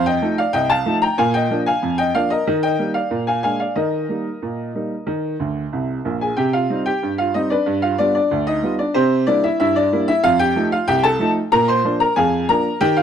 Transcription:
0.00 0.17 F2 loud
0.06 0.36 D#5 medium
0.06 0.36 G5 loud
0.22 0.39 F3 medium
0.22 0.40 A3 medium
0.22 0.40 D#4 medium
0.38 0.54 D5 medium
0.38 0.54 F5 medium
0.53 0.81 C2 medium
0.53 0.69 D#5 medium
0.53 0.70 G5 loud
0.70 1.00 F5 medium
0.70 0.95 A5 loud
0.86 1.03 F3 medium
0.86 1.04 A3 medium
0.86 1.04 D#4 medium
1.02 1.17 G5 medium
1.02 1.18 A#5 loud
1.18 1.45 A#2 loud
1.18 1.34 F5 medium
1.18 1.34 G#5 loud
1.34 1.65 D#5 medium
1.34 1.60 G5 loud
1.51 1.68 F3 medium
1.51 1.69 A#3 medium
1.51 1.69 D4 medium
1.66 1.97 F5 medium
1.66 1.97 G#5 loud
1.83 2.10 F2 medium
1.98 2.14 D#5 medium
1.98 2.14 G5 loud
2.15 2.32 F3 medium
2.15 2.33 A#3 medium
2.15 2.33 D4 medium
2.15 2.30 D5 medium
2.15 2.31 F5 loud
2.30 2.61 A#4 medium
2.30 2.56 D#5 medium
2.47 2.75 D#3 medium
2.63 2.93 D#5 medium
2.63 2.89 G5 loud
2.79 2.97 G3 medium
2.79 2.97 A#3 medium
2.79 2.97 D#4 medium
2.94 3.25 D5 medium
2.94 3.20 F5 medium
3.11 3.39 A#2 medium
3.27 3.43 F5 medium
3.27 3.42 G#5 medium
3.43 3.61 G#3 soft
3.43 3.62 A#3 soft
3.43 3.62 D4 soft
3.43 3.58 F5 medium
3.43 3.60 G#5 medium
3.60 3.76 D5 medium
3.60 3.76 F5 medium
3.76 4.04 D#3 medium
3.76 6.01 A#4 medium
3.76 6.01 D#5 medium
4.09 4.27 G3 soft
4.09 4.27 A#3 soft
4.09 4.28 D#4 soft
4.42 4.70 A#2 medium
4.75 4.93 G3 soft
4.75 4.93 A#3 soft
4.75 4.93 D#4 soft
5.07 5.35 D#3 medium
5.40 5.64 D2 medium
5.40 5.64 D3 medium
5.73 5.97 C2 medium
5.73 5.97 C3 medium
6.05 6.29 A#1 medium
6.05 6.29 A#2 medium
6.21 6.37 G#4 medium
6.21 6.38 G#5 medium
6.37 6.65 C3 medium
6.37 6.53 G4 medium
6.37 6.53 G5 medium
6.53 6.84 F4 medium
6.53 6.79 F5 medium
6.69 6.87 G3 medium
6.69 6.88 C4 medium
6.69 6.88 D#4 medium
6.86 7.17 G4 medium
6.86 7.12 G5 medium
7.03 7.30 G2 medium
7.18 7.34 F4 medium
7.18 7.34 F5 medium
7.34 7.52 G3 soft
7.34 7.52 C4 medium
7.34 7.50 D#4 medium
7.34 7.50 D#5 loud
7.50 7.81 D4 medium
7.50 7.81 B4 medium
7.50 7.76 D5 medium
7.66 7.94 G2 medium
7.82 7.98 F4 medium
7.82 7.98 F5 medium
7.98 8.16 G3 medium
7.98 8.17 B3 medium
7.98 8.14 D4 medium
7.98 8.17 F4 medium
7.98 8.13 D5 loud
8.15 8.45 D4 medium
8.15 8.45 D5 medium
8.31 8.58 D2 medium
8.47 8.77 D#4 medium
8.47 8.73 D#5 loud
8.62 8.80 G3 medium
8.62 8.81 B3 medium
8.62 8.81 F4 medium
8.79 8.95 D4 medium
8.79 8.95 D5 medium
8.94 9.22 C3 medium
8.94 9.25 C4 medium
8.94 9.25 G4 medium
8.94 9.25 C5 loud
9.27 9.45 G3 medium
9.27 9.45 A#3 medium
9.27 9.43 D4 medium
9.27 9.43 E4 medium
9.27 9.43 D5 loud
9.44 9.59 E4 medium
9.44 9.58 E5 medium
9.60 9.87 G2 medium
9.60 9.75 E4 medium
9.60 9.76 E5 loud
9.76 10.06 D4 medium
9.76 10.06 D5 loud
9.92 10.10 G3 medium
9.92 10.10 A#3 medium
9.92 10.08 E4 medium
10.08 10.24 E4 medium
10.08 10.24 E5 loud
10.24 10.51 F2 loud
10.24 10.39 F4 loud
10.24 10.40 F5 loud
10.39 10.70 G4 medium
10.39 10.65 G5 loud
10.56 10.74 F3 medium
10.56 10.74 A3 medium
10.56 10.74 D#4 medium
10.72 10.88 F4 medium
10.72 10.88 F5 loud
10.88 11.15 C2 medium
10.88 11.03 G4 medium
10.88 11.04 G5 loud
11.03 11.34 A4 medium
11.03 11.29 A5 loud
11.20 11.37 F3 medium
11.20 11.38 A3 medium
11.20 11.38 D#4 medium
11.52 11.79 A#2 loud
11.52 11.68 A#4 loud
11.52 11.68 A#5 loud
11.68 11.99 C5 medium
11.68 11.94 C6 loud
11.85 12.02 F3 medium
11.85 12.02 A#3 medium
11.85 12.03 D4 medium
12.00 12.16 A#4 medium
12.00 12.16 A#5 loud
12.16 12.44 F2 medium
12.16 12.47 G#4 medium
12.16 12.47 F5 medium
12.16 12.47 G#5 loud
12.49 12.67 F3 medium
12.49 12.67 A#3 medium
12.49 12.67 D4 medium
12.49 12.79 A#4 medium
12.49 12.80 A#5 loud
12.81 13.03 D#3 loud
12.81 12.96 G4 medium
12.81 12.97 G5 loud
12.97 13.03 F4 medium
12.97 13.03 F5 loud

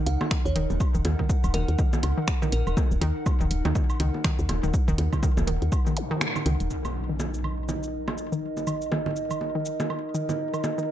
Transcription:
0.00 6.69 D#4 medium
0.00 6.70 A#4 medium
0.00 6.73 F#5 medium
0.06 0.18 C#2 medium
0.06 0.21 F#5 medium
0.06 closed hi-hat medium
0.21 low bongo medium
0.21 high woodblock medium
0.31 0.36 D#3 medium
0.31 finger snap loud
0.31 kick loud
0.31 shaker medium
0.45 0.53 D#2 loud
0.45 0.56 C#5 medium
0.45 shaker soft
0.56 0.67 D#1 medium
0.56 0.61 D#3 loud
0.56 closed hi-hat medium
0.70 0.78 D#1 medium
0.70 low bongo soft
0.70 shaker soft
0.80 kick loud
0.80 high woodblock medium
0.80 shaker medium
0.95 1.03 D#1 loud
0.95 0.98 D#3 medium
0.95 shaker soft
1.05 1.16 D#2 loud
1.05 closed hi-hat medium
1.05 low bongo medium
1.19 1.23 D#3 loud
1.19 kick medium
1.29 kick loud
1.29 shaker medium
1.44 1.52 D#1 loud
1.44 high woodblock medium
1.44 shaker soft
1.54 1.65 D#1 medium
1.54 1.59 D#3 medium
1.54 1.69 A#4 medium
1.54 closed hi-hat medium
1.54 low bongo soft
1.68 1.76 D#2 medium
1.68 closed hi-hat soft
1.79 1.84 D#3 loud
1.79 kick loud
1.79 shaker medium
1.93 low bongo medium
1.93 shaker soft
2.03 2.14 C#2 medium
2.03 closed hi-hat medium
2.03 high woodblock medium
2.18 2.21 D#3 medium
2.28 finger snap loud
2.28 kick loud
2.28 shaker medium
2.42 2.46 D#3 loud
2.42 low bongo soft
2.42 low conga medium
2.42 shaker soft
2.52 2.63 A#1 medium
2.52 2.62 A#4 medium
2.52 closed hi-hat medium
2.67 2.75 D#1 medium
2.67 2.73 A#4 medium
2.67 high woodblock medium
2.67 shaker soft
2.77 2.82 D#3 medium
2.77 kick loud
2.77 low bongo medium
2.77 shaker medium
2.91 2.99 D#1 loud
2.91 shaker soft
3.01 3.13 D#2 loud
3.01 3.06 D#3 loud
3.01 closed hi-hat medium
3.26 kick loud
3.26 low bongo soft
3.26 high woodblock medium
3.26 shaker medium
3.41 3.48 D#1 loud
3.41 3.44 D#3 medium
3.41 shaker soft
3.51 3.62 D#1 medium
3.51 closed hi-hat medium
3.65 3.73 D#2 medium
3.65 3.69 D#3 loud
3.65 closed hi-hat soft
3.65 low bongo medium
3.75 kick loud
3.75 low conga medium
3.75 shaker medium
3.90 high woodblock medium
3.90 shaker soft
4.00 4.11 C#2 medium
4.00 4.05 D#3 medium
4.00 closed hi-hat medium
4.14 low bongo soft
4.24 4.29 D#3 loud
4.24 finger snap loud
4.24 kick loud
4.24 shaker medium
4.39 4.47 D#2 loud
4.39 shaker soft
4.49 4.60 D#1 medium
4.49 closed hi-hat medium
4.49 low bongo medium
4.49 high woodblock medium
4.63 4.71 D#1 medium
4.63 4.67 D#3 medium
4.63 shaker soft
4.74 kick loud
4.74 shaker medium
4.88 4.96 D#1 loud
4.88 4.92 D#3 loud
4.88 shaker soft
4.98 5.09 D#2 loud
4.98 closed hi-hat medium
4.98 low bongo soft
5.13 kick medium
5.13 low conga medium
5.13 high woodblock medium
5.13 shaker soft
5.23 5.28 D#3 medium
5.23 kick loud
5.23 shaker medium
5.37 5.45 D#1 loud
5.37 low bongo medium
5.37 shaker soft
5.47 5.59 D#1 medium
5.47 5.52 D#3 loud
5.47 closed hi-hat medium
5.62 5.70 D#2 medium
5.62 closed hi-hat soft
5.72 kick loud
5.72 high woodblock medium
5.72 shaker medium
5.86 5.90 D#3 medium
5.86 low bongo soft
5.86 shaker soft
5.97 closed hi-hat medium
5.97 zap medium
6.11 6.15 D#3 loud
6.21 finger snap loud
6.21 low bongo medium
6.21 shaker medium
6.36 low conga medium
6.36 high woodblock medium
6.36 shaker soft
6.46 6.57 C#2 loud
6.46 6.51 D#3 medium
6.46 closed hi-hat medium
6.60 6.68 D#1 medium
6.60 closed hi-hat soft
6.60 shaker soft
6.70 10.91 D#4 medium
6.70 impact medium
6.70 shaker medium
6.85 6.88 D#3 medium
6.85 10.91 A#4 medium
6.85 low bongo soft
6.85 high woodblock medium
6.85 shaker soft
7.00 10.91 D#5 medium
7.09 7.13 D#3 medium
7.20 low bongo medium
7.20 shaker medium
7.34 shaker soft
7.44 7.49 D#3 medium
7.44 high woodblock medium
7.69 7.74 D#3 loud
7.69 low bongo soft
7.69 low conga medium
7.69 shaker medium
7.83 shaker soft
8.08 8.11 D#3 medium
8.08 low bongo medium
8.08 high woodblock medium
8.18 shaker medium
8.32 8.36 D#3 loud
8.32 shaker soft
8.57 low bongo soft
8.57 shaker soft
8.67 8.72 D#3 medium
8.67 high woodblock medium
8.67 shaker medium
8.82 shaker soft
8.92 8.97 D#3 loud
8.92 low bongo medium
9.06 low conga medium
9.16 shaker medium
9.31 9.34 D#3 medium
9.31 high woodblock medium
9.31 shaker soft
9.41 low bongo soft
9.55 9.59 D#3 loud
9.65 shaker medium
9.80 low bongo medium
9.80 shaker soft
9.90 9.95 D#3 medium
9.90 high woodblock medium
10.15 10.20 D#3 loud
10.15 shaker medium
10.29 low bongo soft
10.29 low conga medium
10.29 shaker soft
10.54 10.57 D#3 medium
10.54 high woodblock medium
10.54 shaker soft
10.64 low bongo medium
10.64 shaker medium
10.78 10.82 D#3 loud
10.78 shaker soft

